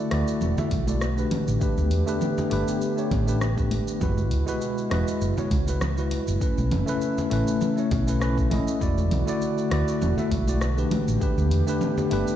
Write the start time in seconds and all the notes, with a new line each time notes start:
Already playing: D3 A3 F#4
0.10 D2 A3 E4 F#4 D5, cross-stick, open hi-hat
0.28 shaker
0.41 E1, low conga, shaker
0.56 A3 E4 F#4 E5, low conga, shaker
0.71 B1, kick, open hi-hat, high conga
0.86 A3 E4 F#4 D5, high conga, shaker
1.01 cross-stick, shaker
1.16 A3 D4 G4 B4, shaker
1.31 B3 G4, open hi-hat, high conga, low conga
1.48 A1, shaker
1.60 A3 D4 G4 B4, kick, shaker
1.78 D2, high conga, shaker
1.91 E2, open hi-hat
2.06 A3 D4 G4 B4, shaker
2.21 low conga, shaker
2.38 low conga, shaker
2.50 G1 A3 D4 G4 B4, open hi-hat
2.68 shaker
2.81 shaker
2.96 A3 D4 G4 C#5, shaker
3.11 A1, kick, open hi-hat, low conga
3.26 A3 D4 G4 B4, shaker
3.41 cross-stick, shaker
3.56 A3 D4 G4 B4, kick, shaker
3.71 open hi-hat, high conga
3.88 shaker
4.00 F#1 B2 G#3 E4 F#4 B4, kick, low conga, shaker
4.18 high conga, shaker
4.31 C#2, open hi-hat
4.46 G#3 E4 F#4 B4, shaker
4.61 shaker
4.78 shaker
4.90 E1 G#3 E4 F#4 B4, cross-stick, open hi-hat, low conga
5.08 shaker
5.21 F#1, shaker
5.36 G#3 E4 F#4 C#5, low conga, shaker
5.51 C#2, kick, open hi-hat, high conga
5.66 G#3 E4 F#4 B4, high conga, shaker
5.81 cross-stick, low conga, shaker
5.96 G#3 E4 F#4 B4, shaker
6.11 open hi-hat, high conga
6.28 F#1, shaker
6.40 C#3 A3 C#4 E4 B4, kick, shaker
6.58 B1, high conga, shaker
6.71 F#1, open hi-hat, low conga
6.86 A3 C#4 E4 B4, shaker
7.01 shaker
7.18 low conga, shaker
7.30 A1 A3 C#4 E4 B4, open hi-hat
7.48 shaker
7.61 low conga, shaker
7.76 A3 C#4 E4 C#5, shaker
7.91 B1, kick, open hi-hat, low conga
8.07 A3 C#4 E4 B4, shaker
8.20 A3 C#4 E4 B4, cross-stick, shaker
8.38 kick, shaker
8.50 A3 C#4 E4 D#5, open hi-hat, high conga, low conga
8.68 shaker
8.80 E1 D3 A3 E4 F#4 D5, kick, shaker
8.98 high conga, shaker
9.11 B1, open hi-hat, low conga
9.26 A3 E4 F#4 D5, shaker
9.42 shaker
9.58 shaker
9.70 D2 A3 E4 F#4 D5, cross-stick, open hi-hat
9.88 shaker
10.02 E1, low conga, shaker
10.17 A3 E4 F#4 E5, low conga, shaker
10.31 B1, kick, open hi-hat, high conga
10.47 A3 E4 F#4 D5, high conga, shaker
10.61 cross-stick, shaker
10.76 A3 D4 G4 B4, shaker
10.91 B3 G4, open hi-hat, high conga, low conga
11.08 A1, shaker
11.20 A3 D4 G4 B4, kick, shaker
11.38 D2, high conga, shaker
11.51 E2, open hi-hat
11.66 A3 D4 G4 B4, shaker
11.81 low conga, shaker
11.98 low conga, shaker
12.10 G1 A3 D4 G4 B4, open hi-hat
12.28 shaker